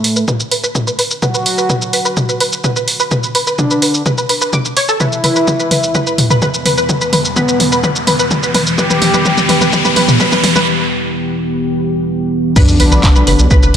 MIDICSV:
0, 0, Header, 1, 8, 480
1, 0, Start_track
1, 0, Key_signature, 2, "minor"
1, 0, Tempo, 472441
1, 1243, Time_signature, 4, 2, 24, 8
1, 13987, End_track
2, 0, Start_track
2, 0, Title_t, "Synth pluck"
2, 0, Program_c, 0, 84
2, 165, Note_on_c, 0, 71, 74
2, 232, Note_off_c, 0, 71, 0
2, 282, Note_on_c, 0, 71, 81
2, 388, Note_off_c, 0, 71, 0
2, 523, Note_on_c, 0, 71, 78
2, 594, Note_off_c, 0, 71, 0
2, 646, Note_on_c, 0, 71, 80
2, 746, Note_off_c, 0, 71, 0
2, 886, Note_on_c, 0, 71, 74
2, 953, Note_off_c, 0, 71, 0
2, 1003, Note_on_c, 0, 71, 77
2, 1109, Note_off_c, 0, 71, 0
2, 1243, Note_on_c, 0, 71, 83
2, 1314, Note_off_c, 0, 71, 0
2, 1366, Note_on_c, 0, 71, 71
2, 1466, Note_off_c, 0, 71, 0
2, 1606, Note_on_c, 0, 71, 76
2, 1673, Note_off_c, 0, 71, 0
2, 1723, Note_on_c, 0, 71, 83
2, 1829, Note_off_c, 0, 71, 0
2, 1963, Note_on_c, 0, 71, 76
2, 2034, Note_off_c, 0, 71, 0
2, 2086, Note_on_c, 0, 71, 75
2, 2186, Note_off_c, 0, 71, 0
2, 2327, Note_on_c, 0, 71, 78
2, 2393, Note_off_c, 0, 71, 0
2, 2443, Note_on_c, 0, 71, 79
2, 2549, Note_off_c, 0, 71, 0
2, 2683, Note_on_c, 0, 71, 81
2, 2754, Note_off_c, 0, 71, 0
2, 2806, Note_on_c, 0, 71, 75
2, 2907, Note_off_c, 0, 71, 0
2, 3046, Note_on_c, 0, 71, 76
2, 3113, Note_off_c, 0, 71, 0
2, 3163, Note_on_c, 0, 71, 79
2, 3269, Note_off_c, 0, 71, 0
2, 3403, Note_on_c, 0, 71, 77
2, 3474, Note_off_c, 0, 71, 0
2, 3527, Note_on_c, 0, 71, 78
2, 3627, Note_off_c, 0, 71, 0
2, 3767, Note_on_c, 0, 71, 76
2, 3834, Note_off_c, 0, 71, 0
2, 3883, Note_on_c, 0, 71, 75
2, 3989, Note_off_c, 0, 71, 0
2, 4123, Note_on_c, 0, 71, 86
2, 4193, Note_off_c, 0, 71, 0
2, 4247, Note_on_c, 0, 71, 76
2, 4347, Note_off_c, 0, 71, 0
2, 4363, Note_on_c, 0, 71, 78
2, 4434, Note_off_c, 0, 71, 0
2, 4486, Note_on_c, 0, 71, 80
2, 4553, Note_off_c, 0, 71, 0
2, 4602, Note_on_c, 0, 86, 101
2, 4709, Note_off_c, 0, 86, 0
2, 4843, Note_on_c, 0, 73, 106
2, 4914, Note_off_c, 0, 73, 0
2, 4966, Note_on_c, 0, 69, 101
2, 5033, Note_off_c, 0, 69, 0
2, 5083, Note_on_c, 0, 71, 84
2, 5189, Note_off_c, 0, 71, 0
2, 5323, Note_on_c, 0, 71, 77
2, 5394, Note_off_c, 0, 71, 0
2, 5446, Note_on_c, 0, 71, 77
2, 5546, Note_off_c, 0, 71, 0
2, 5686, Note_on_c, 0, 71, 75
2, 5753, Note_off_c, 0, 71, 0
2, 5803, Note_on_c, 0, 71, 77
2, 5909, Note_off_c, 0, 71, 0
2, 6042, Note_on_c, 0, 71, 85
2, 6113, Note_off_c, 0, 71, 0
2, 6166, Note_on_c, 0, 71, 76
2, 6267, Note_off_c, 0, 71, 0
2, 6406, Note_on_c, 0, 71, 82
2, 6473, Note_off_c, 0, 71, 0
2, 6523, Note_on_c, 0, 71, 86
2, 6629, Note_off_c, 0, 71, 0
2, 6763, Note_on_c, 0, 71, 81
2, 6833, Note_off_c, 0, 71, 0
2, 6885, Note_on_c, 0, 71, 72
2, 6986, Note_off_c, 0, 71, 0
2, 7126, Note_on_c, 0, 71, 71
2, 7193, Note_off_c, 0, 71, 0
2, 7242, Note_on_c, 0, 71, 73
2, 7349, Note_off_c, 0, 71, 0
2, 7481, Note_on_c, 0, 71, 85
2, 7553, Note_off_c, 0, 71, 0
2, 7605, Note_on_c, 0, 71, 76
2, 7706, Note_off_c, 0, 71, 0
2, 7845, Note_on_c, 0, 71, 79
2, 7913, Note_off_c, 0, 71, 0
2, 7962, Note_on_c, 0, 71, 83
2, 8068, Note_off_c, 0, 71, 0
2, 8202, Note_on_c, 0, 71, 81
2, 8273, Note_off_c, 0, 71, 0
2, 8326, Note_on_c, 0, 71, 77
2, 8426, Note_off_c, 0, 71, 0
2, 8567, Note_on_c, 0, 71, 76
2, 8633, Note_off_c, 0, 71, 0
2, 8683, Note_on_c, 0, 71, 82
2, 8789, Note_off_c, 0, 71, 0
2, 8923, Note_on_c, 0, 71, 84
2, 8994, Note_off_c, 0, 71, 0
2, 9046, Note_on_c, 0, 71, 74
2, 9146, Note_off_c, 0, 71, 0
2, 9287, Note_on_c, 0, 71, 75
2, 9353, Note_off_c, 0, 71, 0
2, 9403, Note_on_c, 0, 71, 84
2, 9509, Note_off_c, 0, 71, 0
2, 9642, Note_on_c, 0, 71, 78
2, 9713, Note_off_c, 0, 71, 0
2, 9767, Note_on_c, 0, 71, 78
2, 9867, Note_off_c, 0, 71, 0
2, 10006, Note_on_c, 0, 71, 77
2, 10073, Note_off_c, 0, 71, 0
2, 10122, Note_on_c, 0, 71, 78
2, 10228, Note_off_c, 0, 71, 0
2, 10363, Note_on_c, 0, 71, 85
2, 10434, Note_off_c, 0, 71, 0
2, 10486, Note_on_c, 0, 71, 78
2, 10587, Note_off_c, 0, 71, 0
2, 10726, Note_on_c, 0, 71, 77
2, 10793, Note_off_c, 0, 71, 0
2, 12763, Note_on_c, 0, 71, 81
2, 12763, Note_on_c, 0, 83, 59
2, 12869, Note_off_c, 0, 71, 0
2, 12869, Note_off_c, 0, 83, 0
2, 13003, Note_on_c, 0, 71, 77
2, 13003, Note_on_c, 0, 83, 53
2, 13073, Note_off_c, 0, 71, 0
2, 13073, Note_off_c, 0, 83, 0
2, 13125, Note_on_c, 0, 71, 80
2, 13125, Note_on_c, 0, 83, 54
2, 13226, Note_off_c, 0, 71, 0
2, 13226, Note_off_c, 0, 83, 0
2, 13366, Note_on_c, 0, 71, 77
2, 13366, Note_on_c, 0, 83, 57
2, 13433, Note_off_c, 0, 71, 0
2, 13433, Note_off_c, 0, 83, 0
2, 13483, Note_on_c, 0, 71, 77
2, 13483, Note_on_c, 0, 83, 54
2, 13589, Note_off_c, 0, 71, 0
2, 13589, Note_off_c, 0, 83, 0
2, 13723, Note_on_c, 0, 71, 84
2, 13723, Note_on_c, 0, 83, 58
2, 13794, Note_off_c, 0, 71, 0
2, 13794, Note_off_c, 0, 83, 0
2, 13846, Note_on_c, 0, 71, 79
2, 13846, Note_on_c, 0, 83, 56
2, 13947, Note_off_c, 0, 71, 0
2, 13947, Note_off_c, 0, 83, 0
2, 13987, End_track
3, 0, Start_track
3, 0, Title_t, "Ambient pad"
3, 0, Program_c, 1, 92
3, 0, Note_on_c, 1, 62, 77
3, 0, Note_on_c, 1, 71, 92
3, 0, Note_on_c, 1, 73, 85
3, 5042, Note_off_c, 1, 62, 0
3, 5042, Note_off_c, 1, 71, 0
3, 5042, Note_off_c, 1, 73, 0
3, 5081, Note_on_c, 1, 52, 88
3, 5082, Note_on_c, 1, 59, 77
3, 5082, Note_on_c, 1, 67, 93
3, 12721, Note_off_c, 1, 52, 0
3, 12722, Note_off_c, 1, 59, 0
3, 12722, Note_off_c, 1, 67, 0
3, 12762, Note_on_c, 1, 62, 96
3, 12763, Note_on_c, 1, 59, 87
3, 12763, Note_on_c, 1, 73, 80
3, 13987, Note_off_c, 1, 59, 0
3, 13987, Note_off_c, 1, 62, 0
3, 13987, Note_off_c, 1, 73, 0
3, 13987, End_track
4, 0, Start_track
4, 0, Title_t, "Analog synth lead"
4, 0, Program_c, 2, 81
4, 0, Note_on_c, 2, 57, 94
4, 245, Note_off_c, 2, 57, 0
4, 1244, Note_on_c, 2, 66, 109
4, 2590, Note_off_c, 2, 66, 0
4, 3643, Note_on_c, 2, 62, 98
4, 4086, Note_off_c, 2, 62, 0
4, 5082, Note_on_c, 2, 64, 110
4, 6429, Note_off_c, 2, 64, 0
4, 7482, Note_on_c, 2, 59, 95
4, 7925, Note_off_c, 2, 59, 0
4, 8922, Note_on_c, 2, 67, 113
4, 10269, Note_off_c, 2, 67, 0
4, 12763, Note_on_c, 2, 62, 110
4, 13987, Note_off_c, 2, 62, 0
4, 13987, End_track
5, 0, Start_track
5, 0, Title_t, "Analog synth bass"
5, 0, Program_c, 3, 38
5, 12763, Note_on_c, 3, 35, 101
5, 12850, Note_off_c, 3, 35, 0
5, 12886, Note_on_c, 3, 35, 79
5, 12968, Note_off_c, 3, 35, 0
5, 13003, Note_on_c, 3, 35, 97
5, 13090, Note_off_c, 3, 35, 0
5, 13126, Note_on_c, 3, 35, 84
5, 13208, Note_off_c, 3, 35, 0
5, 13243, Note_on_c, 3, 30, 103
5, 13330, Note_off_c, 3, 30, 0
5, 13366, Note_on_c, 3, 35, 77
5, 13448, Note_off_c, 3, 35, 0
5, 13483, Note_on_c, 3, 30, 92
5, 13570, Note_off_c, 3, 30, 0
5, 13606, Note_on_c, 3, 35, 82
5, 13688, Note_off_c, 3, 35, 0
5, 13723, Note_on_c, 3, 35, 100
5, 13810, Note_off_c, 3, 35, 0
5, 13846, Note_on_c, 3, 30, 80
5, 13928, Note_off_c, 3, 30, 0
5, 13987, End_track
6, 0, Start_track
6, 0, Title_t, "Riser"
6, 0, Program_c, 4, 103
6, 5083, Note_on_c, 4, 60, 78
6, 10843, Note_off_c, 4, 60, 0
6, 13987, End_track
7, 0, Start_track
7, 0, Title_t, "Sub drop"
7, 0, Program_c, 5, 103
7, 12763, Note_on_c, 5, 60, 79
7, 13987, Note_off_c, 5, 60, 0
7, 13987, End_track
8, 0, Start_track
8, 0, Title_t, "Drums"
8, 43, Note_on_c, 9, 46, 106
8, 144, Note_off_c, 9, 46, 0
8, 166, Note_on_c, 9, 82, 57
8, 267, Note_off_c, 9, 82, 0
8, 282, Note_on_c, 9, 36, 116
8, 283, Note_on_c, 9, 47, 57
8, 283, Note_on_c, 9, 82, 53
8, 384, Note_off_c, 9, 36, 0
8, 385, Note_off_c, 9, 47, 0
8, 385, Note_off_c, 9, 82, 0
8, 407, Note_on_c, 9, 82, 57
8, 508, Note_off_c, 9, 82, 0
8, 523, Note_on_c, 9, 46, 107
8, 625, Note_off_c, 9, 46, 0
8, 647, Note_on_c, 9, 82, 56
8, 748, Note_off_c, 9, 82, 0
8, 762, Note_on_c, 9, 36, 123
8, 763, Note_on_c, 9, 47, 58
8, 763, Note_on_c, 9, 82, 57
8, 864, Note_off_c, 9, 36, 0
8, 865, Note_off_c, 9, 47, 0
8, 865, Note_off_c, 9, 82, 0
8, 887, Note_on_c, 9, 82, 54
8, 988, Note_off_c, 9, 82, 0
8, 1003, Note_on_c, 9, 46, 104
8, 1104, Note_off_c, 9, 46, 0
8, 1126, Note_on_c, 9, 82, 55
8, 1228, Note_off_c, 9, 82, 0
8, 1243, Note_on_c, 9, 36, 118
8, 1243, Note_on_c, 9, 47, 58
8, 1243, Note_on_c, 9, 82, 53
8, 1344, Note_off_c, 9, 36, 0
8, 1344, Note_off_c, 9, 47, 0
8, 1344, Note_off_c, 9, 82, 0
8, 1366, Note_on_c, 9, 82, 54
8, 1468, Note_off_c, 9, 82, 0
8, 1483, Note_on_c, 9, 46, 106
8, 1584, Note_off_c, 9, 46, 0
8, 1606, Note_on_c, 9, 82, 54
8, 1708, Note_off_c, 9, 82, 0
8, 1723, Note_on_c, 9, 36, 125
8, 1723, Note_on_c, 9, 47, 59
8, 1723, Note_on_c, 9, 82, 52
8, 1824, Note_off_c, 9, 36, 0
8, 1825, Note_off_c, 9, 47, 0
8, 1825, Note_off_c, 9, 82, 0
8, 1846, Note_on_c, 9, 82, 50
8, 1948, Note_off_c, 9, 82, 0
8, 1963, Note_on_c, 9, 46, 106
8, 2064, Note_off_c, 9, 46, 0
8, 2086, Note_on_c, 9, 82, 51
8, 2188, Note_off_c, 9, 82, 0
8, 2203, Note_on_c, 9, 36, 117
8, 2203, Note_on_c, 9, 47, 63
8, 2203, Note_on_c, 9, 82, 54
8, 2304, Note_off_c, 9, 36, 0
8, 2305, Note_off_c, 9, 47, 0
8, 2305, Note_off_c, 9, 82, 0
8, 2326, Note_on_c, 9, 82, 53
8, 2428, Note_off_c, 9, 82, 0
8, 2443, Note_on_c, 9, 46, 104
8, 2544, Note_off_c, 9, 46, 0
8, 2566, Note_on_c, 9, 82, 54
8, 2668, Note_off_c, 9, 82, 0
8, 2683, Note_on_c, 9, 36, 121
8, 2683, Note_on_c, 9, 47, 62
8, 2683, Note_on_c, 9, 82, 52
8, 2784, Note_off_c, 9, 36, 0
8, 2784, Note_off_c, 9, 47, 0
8, 2784, Note_off_c, 9, 82, 0
8, 2806, Note_on_c, 9, 82, 55
8, 2907, Note_off_c, 9, 82, 0
8, 2922, Note_on_c, 9, 46, 104
8, 3024, Note_off_c, 9, 46, 0
8, 3045, Note_on_c, 9, 82, 53
8, 3147, Note_off_c, 9, 82, 0
8, 3162, Note_on_c, 9, 47, 64
8, 3162, Note_on_c, 9, 82, 51
8, 3163, Note_on_c, 9, 36, 121
8, 3264, Note_off_c, 9, 36, 0
8, 3264, Note_off_c, 9, 47, 0
8, 3264, Note_off_c, 9, 82, 0
8, 3285, Note_on_c, 9, 82, 51
8, 3387, Note_off_c, 9, 82, 0
8, 3402, Note_on_c, 9, 46, 105
8, 3504, Note_off_c, 9, 46, 0
8, 3526, Note_on_c, 9, 82, 52
8, 3627, Note_off_c, 9, 82, 0
8, 3642, Note_on_c, 9, 47, 68
8, 3642, Note_on_c, 9, 82, 51
8, 3643, Note_on_c, 9, 36, 120
8, 3744, Note_off_c, 9, 36, 0
8, 3744, Note_off_c, 9, 47, 0
8, 3744, Note_off_c, 9, 82, 0
8, 3765, Note_on_c, 9, 82, 52
8, 3867, Note_off_c, 9, 82, 0
8, 3882, Note_on_c, 9, 46, 110
8, 3984, Note_off_c, 9, 46, 0
8, 4006, Note_on_c, 9, 82, 52
8, 4107, Note_off_c, 9, 82, 0
8, 4122, Note_on_c, 9, 47, 68
8, 4122, Note_on_c, 9, 82, 52
8, 4123, Note_on_c, 9, 36, 118
8, 4224, Note_off_c, 9, 36, 0
8, 4224, Note_off_c, 9, 47, 0
8, 4224, Note_off_c, 9, 82, 0
8, 4245, Note_on_c, 9, 82, 50
8, 4347, Note_off_c, 9, 82, 0
8, 4362, Note_on_c, 9, 46, 102
8, 4463, Note_off_c, 9, 46, 0
8, 4485, Note_on_c, 9, 82, 54
8, 4587, Note_off_c, 9, 82, 0
8, 4602, Note_on_c, 9, 47, 70
8, 4602, Note_on_c, 9, 82, 54
8, 4603, Note_on_c, 9, 36, 120
8, 4703, Note_off_c, 9, 47, 0
8, 4703, Note_off_c, 9, 82, 0
8, 4704, Note_off_c, 9, 36, 0
8, 4725, Note_on_c, 9, 82, 53
8, 4827, Note_off_c, 9, 82, 0
8, 4842, Note_on_c, 9, 46, 107
8, 4944, Note_off_c, 9, 46, 0
8, 4965, Note_on_c, 9, 82, 50
8, 5067, Note_off_c, 9, 82, 0
8, 5082, Note_on_c, 9, 47, 76
8, 5082, Note_on_c, 9, 82, 54
8, 5083, Note_on_c, 9, 36, 116
8, 5184, Note_off_c, 9, 36, 0
8, 5184, Note_off_c, 9, 47, 0
8, 5184, Note_off_c, 9, 82, 0
8, 5205, Note_on_c, 9, 82, 52
8, 5307, Note_off_c, 9, 82, 0
8, 5322, Note_on_c, 9, 46, 101
8, 5322, Note_on_c, 9, 47, 71
8, 5423, Note_off_c, 9, 46, 0
8, 5423, Note_off_c, 9, 47, 0
8, 5446, Note_on_c, 9, 82, 52
8, 5547, Note_off_c, 9, 82, 0
8, 5562, Note_on_c, 9, 47, 72
8, 5562, Note_on_c, 9, 82, 54
8, 5563, Note_on_c, 9, 36, 119
8, 5664, Note_off_c, 9, 36, 0
8, 5664, Note_off_c, 9, 47, 0
8, 5664, Note_off_c, 9, 82, 0
8, 5686, Note_on_c, 9, 82, 51
8, 5787, Note_off_c, 9, 82, 0
8, 5802, Note_on_c, 9, 46, 104
8, 5802, Note_on_c, 9, 47, 76
8, 5904, Note_off_c, 9, 46, 0
8, 5904, Note_off_c, 9, 47, 0
8, 5926, Note_on_c, 9, 82, 53
8, 6028, Note_off_c, 9, 82, 0
8, 6042, Note_on_c, 9, 47, 76
8, 6042, Note_on_c, 9, 82, 54
8, 6043, Note_on_c, 9, 36, 119
8, 6144, Note_off_c, 9, 36, 0
8, 6144, Note_off_c, 9, 47, 0
8, 6144, Note_off_c, 9, 82, 0
8, 6165, Note_on_c, 9, 82, 52
8, 6267, Note_off_c, 9, 82, 0
8, 6282, Note_on_c, 9, 46, 105
8, 6282, Note_on_c, 9, 47, 85
8, 6384, Note_off_c, 9, 46, 0
8, 6384, Note_off_c, 9, 47, 0
8, 6406, Note_on_c, 9, 47, 97
8, 6406, Note_on_c, 9, 82, 55
8, 6507, Note_off_c, 9, 47, 0
8, 6507, Note_off_c, 9, 82, 0
8, 6522, Note_on_c, 9, 47, 83
8, 6522, Note_on_c, 9, 82, 53
8, 6523, Note_on_c, 9, 36, 117
8, 6624, Note_off_c, 9, 36, 0
8, 6624, Note_off_c, 9, 47, 0
8, 6624, Note_off_c, 9, 82, 0
8, 6645, Note_on_c, 9, 82, 56
8, 6747, Note_off_c, 9, 82, 0
8, 6762, Note_on_c, 9, 46, 103
8, 6762, Note_on_c, 9, 47, 77
8, 6864, Note_off_c, 9, 46, 0
8, 6864, Note_off_c, 9, 47, 0
8, 6885, Note_on_c, 9, 82, 53
8, 6987, Note_off_c, 9, 82, 0
8, 7002, Note_on_c, 9, 47, 84
8, 7002, Note_on_c, 9, 82, 55
8, 7003, Note_on_c, 9, 36, 108
8, 7103, Note_off_c, 9, 47, 0
8, 7103, Note_off_c, 9, 82, 0
8, 7104, Note_off_c, 9, 36, 0
8, 7125, Note_on_c, 9, 82, 56
8, 7226, Note_off_c, 9, 82, 0
8, 7242, Note_on_c, 9, 46, 98
8, 7242, Note_on_c, 9, 47, 82
8, 7343, Note_off_c, 9, 46, 0
8, 7343, Note_off_c, 9, 47, 0
8, 7364, Note_on_c, 9, 82, 56
8, 7466, Note_off_c, 9, 82, 0
8, 7481, Note_on_c, 9, 47, 85
8, 7481, Note_on_c, 9, 82, 53
8, 7483, Note_on_c, 9, 36, 117
8, 7583, Note_off_c, 9, 47, 0
8, 7583, Note_off_c, 9, 82, 0
8, 7584, Note_off_c, 9, 36, 0
8, 7605, Note_on_c, 9, 82, 55
8, 7706, Note_off_c, 9, 82, 0
8, 7721, Note_on_c, 9, 46, 101
8, 7721, Note_on_c, 9, 47, 85
8, 7823, Note_off_c, 9, 46, 0
8, 7823, Note_off_c, 9, 47, 0
8, 7845, Note_on_c, 9, 82, 58
8, 7947, Note_off_c, 9, 82, 0
8, 7961, Note_on_c, 9, 47, 87
8, 7961, Note_on_c, 9, 82, 55
8, 7963, Note_on_c, 9, 36, 110
8, 8062, Note_off_c, 9, 47, 0
8, 8062, Note_off_c, 9, 82, 0
8, 8064, Note_off_c, 9, 36, 0
8, 8084, Note_on_c, 9, 82, 53
8, 8186, Note_off_c, 9, 82, 0
8, 8201, Note_on_c, 9, 46, 103
8, 8201, Note_on_c, 9, 47, 86
8, 8303, Note_off_c, 9, 46, 0
8, 8303, Note_off_c, 9, 47, 0
8, 8325, Note_on_c, 9, 82, 58
8, 8426, Note_off_c, 9, 82, 0
8, 8441, Note_on_c, 9, 47, 91
8, 8441, Note_on_c, 9, 82, 58
8, 8443, Note_on_c, 9, 36, 119
8, 8543, Note_off_c, 9, 47, 0
8, 8543, Note_off_c, 9, 82, 0
8, 8544, Note_off_c, 9, 36, 0
8, 8565, Note_on_c, 9, 82, 57
8, 8666, Note_off_c, 9, 82, 0
8, 8682, Note_on_c, 9, 46, 96
8, 8682, Note_on_c, 9, 47, 88
8, 8783, Note_off_c, 9, 46, 0
8, 8783, Note_off_c, 9, 47, 0
8, 8805, Note_on_c, 9, 82, 56
8, 8907, Note_off_c, 9, 82, 0
8, 8922, Note_on_c, 9, 47, 91
8, 8922, Note_on_c, 9, 82, 60
8, 8923, Note_on_c, 9, 36, 111
8, 9023, Note_off_c, 9, 47, 0
8, 9023, Note_off_c, 9, 82, 0
8, 9024, Note_off_c, 9, 36, 0
8, 9045, Note_on_c, 9, 47, 82
8, 9045, Note_on_c, 9, 82, 57
8, 9147, Note_off_c, 9, 47, 0
8, 9147, Note_off_c, 9, 82, 0
8, 9161, Note_on_c, 9, 46, 102
8, 9161, Note_on_c, 9, 47, 88
8, 9263, Note_off_c, 9, 46, 0
8, 9263, Note_off_c, 9, 47, 0
8, 9285, Note_on_c, 9, 47, 81
8, 9285, Note_on_c, 9, 82, 57
8, 9387, Note_off_c, 9, 47, 0
8, 9387, Note_off_c, 9, 82, 0
8, 9402, Note_on_c, 9, 47, 94
8, 9402, Note_on_c, 9, 82, 58
8, 9403, Note_on_c, 9, 36, 118
8, 9503, Note_off_c, 9, 47, 0
8, 9503, Note_off_c, 9, 82, 0
8, 9504, Note_off_c, 9, 36, 0
8, 9525, Note_on_c, 9, 47, 80
8, 9525, Note_on_c, 9, 82, 57
8, 9627, Note_off_c, 9, 47, 0
8, 9627, Note_off_c, 9, 82, 0
8, 9642, Note_on_c, 9, 46, 101
8, 9642, Note_on_c, 9, 47, 91
8, 9744, Note_off_c, 9, 46, 0
8, 9744, Note_off_c, 9, 47, 0
8, 9766, Note_on_c, 9, 47, 83
8, 9766, Note_on_c, 9, 82, 61
8, 9867, Note_off_c, 9, 47, 0
8, 9867, Note_off_c, 9, 82, 0
8, 9883, Note_on_c, 9, 36, 112
8, 9883, Note_on_c, 9, 47, 96
8, 9883, Note_on_c, 9, 82, 58
8, 9984, Note_off_c, 9, 36, 0
8, 9984, Note_off_c, 9, 47, 0
8, 9984, Note_off_c, 9, 82, 0
8, 10006, Note_on_c, 9, 47, 87
8, 10006, Note_on_c, 9, 82, 58
8, 10108, Note_off_c, 9, 47, 0
8, 10108, Note_off_c, 9, 82, 0
8, 10122, Note_on_c, 9, 46, 100
8, 10122, Note_on_c, 9, 47, 99
8, 10224, Note_off_c, 9, 46, 0
8, 10224, Note_off_c, 9, 47, 0
8, 10246, Note_on_c, 9, 47, 98
8, 10246, Note_on_c, 9, 82, 60
8, 10348, Note_off_c, 9, 47, 0
8, 10348, Note_off_c, 9, 82, 0
8, 10363, Note_on_c, 9, 36, 119
8, 10363, Note_on_c, 9, 47, 99
8, 10363, Note_on_c, 9, 82, 57
8, 10464, Note_off_c, 9, 36, 0
8, 10464, Note_off_c, 9, 47, 0
8, 10464, Note_off_c, 9, 82, 0
8, 10486, Note_on_c, 9, 47, 93
8, 10486, Note_on_c, 9, 82, 57
8, 10588, Note_off_c, 9, 47, 0
8, 10588, Note_off_c, 9, 82, 0
8, 10603, Note_on_c, 9, 46, 101
8, 10603, Note_on_c, 9, 47, 98
8, 10704, Note_off_c, 9, 46, 0
8, 10704, Note_off_c, 9, 47, 0
8, 10726, Note_on_c, 9, 47, 88
8, 10726, Note_on_c, 9, 82, 58
8, 10828, Note_off_c, 9, 47, 0
8, 10828, Note_off_c, 9, 82, 0
8, 12763, Note_on_c, 9, 36, 117
8, 12763, Note_on_c, 9, 49, 108
8, 12763, Note_on_c, 9, 82, 59
8, 12864, Note_off_c, 9, 36, 0
8, 12864, Note_off_c, 9, 49, 0
8, 12864, Note_off_c, 9, 82, 0
8, 12886, Note_on_c, 9, 82, 58
8, 12988, Note_off_c, 9, 82, 0
8, 13003, Note_on_c, 9, 46, 102
8, 13104, Note_off_c, 9, 46, 0
8, 13126, Note_on_c, 9, 82, 58
8, 13228, Note_off_c, 9, 82, 0
8, 13243, Note_on_c, 9, 36, 123
8, 13243, Note_on_c, 9, 39, 123
8, 13243, Note_on_c, 9, 82, 60
8, 13344, Note_off_c, 9, 36, 0
8, 13344, Note_off_c, 9, 39, 0
8, 13344, Note_off_c, 9, 82, 0
8, 13366, Note_on_c, 9, 82, 58
8, 13468, Note_off_c, 9, 82, 0
8, 13482, Note_on_c, 9, 46, 106
8, 13584, Note_off_c, 9, 46, 0
8, 13606, Note_on_c, 9, 82, 57
8, 13707, Note_off_c, 9, 82, 0
8, 13722, Note_on_c, 9, 82, 61
8, 13723, Note_on_c, 9, 36, 120
8, 13824, Note_off_c, 9, 36, 0
8, 13824, Note_off_c, 9, 82, 0
8, 13845, Note_on_c, 9, 82, 58
8, 13947, Note_off_c, 9, 82, 0
8, 13987, End_track
0, 0, End_of_file